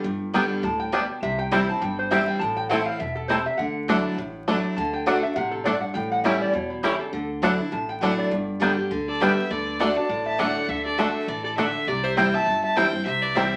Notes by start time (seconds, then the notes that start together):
0.04 G1 G2
0.34 D3 G3 B3 D4 G4 D5 G5
0.63 D2 A2 A5
0.79 G5
0.92 B2 G3 B3 D4 G4 D5 G5
1.22 C2 C3 E5
1.39 G5
1.51 E3 G3 C4 E4 C5 G5 B5
1.69 C4 E4 A5
1.81 G1 G2 G5
1.99 C5
2.11 E3 G3 C4 E4 C5 E5 G5
2.27 G5
2.39 A1 A2 A5
2.56 G5
2.69 E3 A3 C4 E4 C5 F#5 A5
2.85 F5
2.99 E1 B2 E5
3.15 A4
3.28 C3 A3 C4 E4 C5 A5
3.46 E5
3.57 D2 D3 F#5
3.88 F#3 A3 D4 E4 D5 F#5
4.18 A1 A2
4.48 F#3 A3 D4 E4 D5 F#5
4.76 D2 D3 A5
4.93 G5
5.06 D3 A3 D4 F#4 D5 F#5
5.23 D4 F#4 E5
5.36 A1 C3 F#5
5.51 A4
5.64 G2 A3 D4 F#4 D5 F#5
5.80 F#5
5.94 A1 A2 G5
6.11 F#5
6.24 E3 G3 A3 C#4 E4 C#5 E5 G5
6.41 D5
6.53 E2 B2 C#5
6.70 E4
6.83 C#3 G3 A3 C#4 E4 G4 C#5 G5
6.99 A4
7.13 D2 D3
7.42 F#3 A3 D4 E4 D5 F#5
7.58 D4 E4
7.72 A1 A2 A5
7.89 G5
8.01 F#3 A3 D4 E4 D5 F#5
8.18 D5
8.31 G1 G2
8.60 D3 G3 B3 D4 G4 D5 G5
8.76 B3 G4
8.91 D2 D3
9.08 A4 D5
9.20 D3 G3 B3 D4 G4 B4 D5 E5 G5
9.37 B3 G4
9.50 D2 D3 A4 D5
9.79 D3 A3 D4 F#4 D5 F#5
9.96 D4 F#4 D5 A5
10.09 A1 A2
10.26 E5 A5
10.38 D3 A3 D4 F#4 D5 F#5
10.68 D2 D3 A4 E5
10.86 A4 D5
10.98 D3 A3 D4 F#4 A4 D5 E5 F#5
11.28 A1 E3 A4 D5
11.44 A4 D5
11.57 D3 A3 D4 F#4 A4 D5 E5 F#5
11.87 C2 C3 G4 D5
12.04 C5 E5
12.17 E3 G3 C4 E4 C5 G5
12.34 C4 E4 E5 A5
12.46 G1 G2
12.64 E5 A5
12.76 E3 G3 C4 E4 C5 G5
12.93 C4 E4
13.06 C2 C3 C5 E5
13.22 B4 D5
13.35 E3 G3 C4 E4 C5 E5 G5
13.52 C4 E4